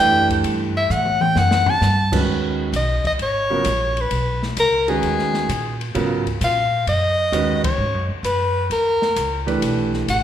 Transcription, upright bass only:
0, 0, Header, 1, 3, 480
1, 0, Start_track
1, 0, Tempo, 458716
1, 460, Time_signature, 4, 2, 24, 8
1, 10707, End_track
2, 0, Start_track
2, 0, Title_t, "Upright bass"
2, 0, Program_c, 0, 32
2, 0, Note_on_c, 0, 42, 99
2, 450, Note_off_c, 0, 42, 0
2, 465, Note_on_c, 0, 43, 97
2, 928, Note_off_c, 0, 43, 0
2, 940, Note_on_c, 0, 45, 100
2, 1405, Note_off_c, 0, 45, 0
2, 1414, Note_on_c, 0, 42, 87
2, 1882, Note_off_c, 0, 42, 0
2, 1892, Note_on_c, 0, 43, 93
2, 2361, Note_off_c, 0, 43, 0
2, 2373, Note_on_c, 0, 39, 83
2, 2841, Note_off_c, 0, 39, 0
2, 2851, Note_on_c, 0, 35, 89
2, 3160, Note_off_c, 0, 35, 0
2, 3338, Note_on_c, 0, 32, 77
2, 3805, Note_off_c, 0, 32, 0
2, 3820, Note_on_c, 0, 34, 87
2, 4285, Note_off_c, 0, 34, 0
2, 4299, Note_on_c, 0, 35, 83
2, 4765, Note_off_c, 0, 35, 0
2, 4779, Note_on_c, 0, 37, 84
2, 5245, Note_off_c, 0, 37, 0
2, 5259, Note_on_c, 0, 39, 82
2, 5725, Note_off_c, 0, 39, 0
2, 5741, Note_on_c, 0, 46, 89
2, 6206, Note_off_c, 0, 46, 0
2, 6228, Note_on_c, 0, 44, 91
2, 6690, Note_off_c, 0, 44, 0
2, 6704, Note_on_c, 0, 46, 98
2, 7168, Note_off_c, 0, 46, 0
2, 7184, Note_on_c, 0, 42, 77
2, 7648, Note_off_c, 0, 42, 0
2, 7660, Note_on_c, 0, 39, 92
2, 8126, Note_off_c, 0, 39, 0
2, 8138, Note_on_c, 0, 44, 89
2, 8310, Note_off_c, 0, 44, 0
2, 8310, Note_on_c, 0, 42, 59
2, 8456, Note_off_c, 0, 42, 0
2, 8462, Note_on_c, 0, 39, 63
2, 8605, Note_off_c, 0, 39, 0
2, 8611, Note_on_c, 0, 42, 89
2, 9081, Note_off_c, 0, 42, 0
2, 9103, Note_on_c, 0, 39, 81
2, 9567, Note_off_c, 0, 39, 0
2, 9586, Note_on_c, 0, 37, 89
2, 10048, Note_off_c, 0, 37, 0
2, 10068, Note_on_c, 0, 35, 81
2, 10529, Note_off_c, 0, 35, 0
2, 10550, Note_on_c, 0, 33, 90
2, 10707, Note_off_c, 0, 33, 0
2, 10707, End_track
3, 0, Start_track
3, 0, Title_t, "Muted upright bass strokes"
3, 3185, Note_on_c, 9, 29, 36
3, 3290, Note_off_c, 9, 29, 0
3, 10707, End_track
0, 0, End_of_file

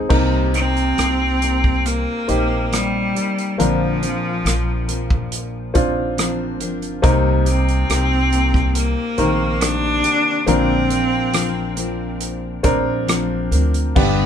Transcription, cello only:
0, 0, Header, 1, 2, 480
1, 0, Start_track
1, 0, Tempo, 875912
1, 57, Time_signature, 4, 2, 24, 8
1, 1497, Tempo, 860832
1, 5817, Tempo, 872093
1, 7897, End_track
2, 0, Start_track
2, 0, Title_t, "Cello"
2, 0, Program_c, 0, 42
2, 299, Note_on_c, 0, 60, 97
2, 1019, Note_on_c, 0, 58, 90
2, 1028, Note_off_c, 0, 60, 0
2, 1499, Note_on_c, 0, 55, 84
2, 1507, Note_off_c, 0, 58, 0
2, 1985, Note_on_c, 0, 53, 79
2, 1994, Note_off_c, 0, 55, 0
2, 2943, Note_off_c, 0, 53, 0
2, 4146, Note_on_c, 0, 60, 101
2, 4838, Note_off_c, 0, 60, 0
2, 4861, Note_on_c, 0, 58, 91
2, 5330, Note_on_c, 0, 62, 109
2, 5339, Note_off_c, 0, 58, 0
2, 5813, Note_on_c, 0, 60, 96
2, 5821, Note_off_c, 0, 62, 0
2, 6768, Note_off_c, 0, 60, 0
2, 7739, Note_on_c, 0, 59, 81
2, 7897, Note_off_c, 0, 59, 0
2, 7897, End_track
0, 0, End_of_file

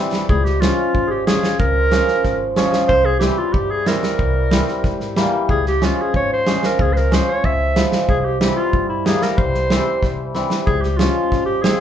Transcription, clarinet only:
0, 0, Header, 1, 2, 480
1, 0, Start_track
1, 0, Tempo, 648649
1, 218, Time_signature, 2, 2, 24, 8
1, 8733, End_track
2, 0, Start_track
2, 0, Title_t, "Clarinet"
2, 0, Program_c, 0, 71
2, 219, Note_on_c, 0, 68, 96
2, 332, Note_on_c, 0, 67, 89
2, 344, Note_off_c, 0, 68, 0
2, 450, Note_on_c, 0, 65, 89
2, 461, Note_off_c, 0, 67, 0
2, 787, Note_off_c, 0, 65, 0
2, 793, Note_on_c, 0, 68, 65
2, 819, Note_on_c, 0, 67, 94
2, 830, Note_off_c, 0, 68, 0
2, 936, Note_off_c, 0, 67, 0
2, 940, Note_on_c, 0, 68, 93
2, 1165, Note_off_c, 0, 68, 0
2, 1182, Note_on_c, 0, 70, 112
2, 1876, Note_off_c, 0, 70, 0
2, 2131, Note_on_c, 0, 72, 117
2, 2260, Note_on_c, 0, 68, 108
2, 2271, Note_off_c, 0, 72, 0
2, 2359, Note_off_c, 0, 68, 0
2, 2363, Note_on_c, 0, 67, 100
2, 2503, Note_on_c, 0, 65, 95
2, 2514, Note_off_c, 0, 67, 0
2, 2611, Note_on_c, 0, 67, 88
2, 2622, Note_off_c, 0, 65, 0
2, 2746, Note_on_c, 0, 68, 97
2, 2757, Note_off_c, 0, 67, 0
2, 2866, Note_on_c, 0, 70, 99
2, 2878, Note_off_c, 0, 68, 0
2, 3826, Note_off_c, 0, 70, 0
2, 4072, Note_on_c, 0, 68, 100
2, 4181, Note_off_c, 0, 68, 0
2, 4203, Note_on_c, 0, 67, 97
2, 4328, Note_on_c, 0, 65, 84
2, 4339, Note_off_c, 0, 67, 0
2, 4452, Note_on_c, 0, 68, 85
2, 4463, Note_off_c, 0, 65, 0
2, 4554, Note_off_c, 0, 68, 0
2, 4558, Note_on_c, 0, 73, 90
2, 4664, Note_off_c, 0, 73, 0
2, 4686, Note_on_c, 0, 72, 95
2, 4924, Note_on_c, 0, 70, 84
2, 4935, Note_off_c, 0, 72, 0
2, 5042, Note_on_c, 0, 68, 102
2, 5053, Note_off_c, 0, 70, 0
2, 5129, Note_on_c, 0, 72, 68
2, 5140, Note_off_c, 0, 68, 0
2, 5159, Note_on_c, 0, 70, 103
2, 5170, Note_off_c, 0, 72, 0
2, 5284, Note_on_c, 0, 72, 94
2, 5295, Note_off_c, 0, 70, 0
2, 5398, Note_on_c, 0, 73, 106
2, 5409, Note_off_c, 0, 72, 0
2, 5513, Note_on_c, 0, 76, 105
2, 5524, Note_off_c, 0, 73, 0
2, 5867, Note_off_c, 0, 76, 0
2, 5987, Note_on_c, 0, 68, 101
2, 6070, Note_off_c, 0, 68, 0
2, 6070, Note_on_c, 0, 68, 75
2, 6104, Note_on_c, 0, 67, 93
2, 6115, Note_off_c, 0, 68, 0
2, 6213, Note_off_c, 0, 67, 0
2, 6217, Note_on_c, 0, 67, 80
2, 6330, Note_off_c, 0, 67, 0
2, 6338, Note_on_c, 0, 65, 101
2, 6562, Note_off_c, 0, 65, 0
2, 6579, Note_on_c, 0, 64, 85
2, 6705, Note_on_c, 0, 68, 99
2, 6716, Note_off_c, 0, 64, 0
2, 6828, Note_on_c, 0, 70, 84
2, 6839, Note_off_c, 0, 68, 0
2, 6937, Note_on_c, 0, 72, 95
2, 6948, Note_off_c, 0, 70, 0
2, 7656, Note_off_c, 0, 72, 0
2, 7892, Note_on_c, 0, 68, 100
2, 8003, Note_on_c, 0, 67, 89
2, 8014, Note_off_c, 0, 68, 0
2, 8118, Note_on_c, 0, 65, 89
2, 8130, Note_off_c, 0, 67, 0
2, 8475, Note_off_c, 0, 65, 0
2, 8479, Note_on_c, 0, 67, 91
2, 8602, Note_on_c, 0, 68, 101
2, 8613, Note_off_c, 0, 67, 0
2, 8733, Note_off_c, 0, 68, 0
2, 8733, End_track
0, 0, End_of_file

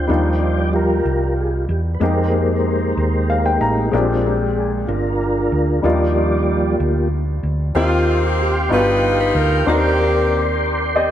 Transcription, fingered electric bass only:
0, 0, Header, 1, 2, 480
1, 0, Start_track
1, 0, Key_signature, -3, "major"
1, 0, Tempo, 639659
1, 65, Time_signature, 6, 3, 24, 8
1, 8338, End_track
2, 0, Start_track
2, 0, Title_t, "Fingered electric bass"
2, 0, Program_c, 0, 33
2, 71, Note_on_c, 0, 39, 85
2, 758, Note_off_c, 0, 39, 0
2, 790, Note_on_c, 0, 36, 69
2, 1238, Note_off_c, 0, 36, 0
2, 1266, Note_on_c, 0, 40, 66
2, 1487, Note_off_c, 0, 40, 0
2, 1506, Note_on_c, 0, 41, 87
2, 2196, Note_off_c, 0, 41, 0
2, 2231, Note_on_c, 0, 39, 76
2, 2679, Note_off_c, 0, 39, 0
2, 2708, Note_on_c, 0, 33, 68
2, 2928, Note_off_c, 0, 33, 0
2, 2950, Note_on_c, 0, 34, 88
2, 3638, Note_off_c, 0, 34, 0
2, 3664, Note_on_c, 0, 31, 74
2, 4116, Note_off_c, 0, 31, 0
2, 4142, Note_on_c, 0, 38, 62
2, 4365, Note_off_c, 0, 38, 0
2, 4381, Note_on_c, 0, 39, 84
2, 5074, Note_off_c, 0, 39, 0
2, 5102, Note_on_c, 0, 38, 72
2, 5554, Note_off_c, 0, 38, 0
2, 5577, Note_on_c, 0, 38, 68
2, 5802, Note_off_c, 0, 38, 0
2, 5816, Note_on_c, 0, 39, 92
2, 6511, Note_off_c, 0, 39, 0
2, 6535, Note_on_c, 0, 31, 79
2, 6990, Note_off_c, 0, 31, 0
2, 7016, Note_on_c, 0, 38, 77
2, 7241, Note_off_c, 0, 38, 0
2, 7257, Note_on_c, 0, 39, 85
2, 8338, Note_off_c, 0, 39, 0
2, 8338, End_track
0, 0, End_of_file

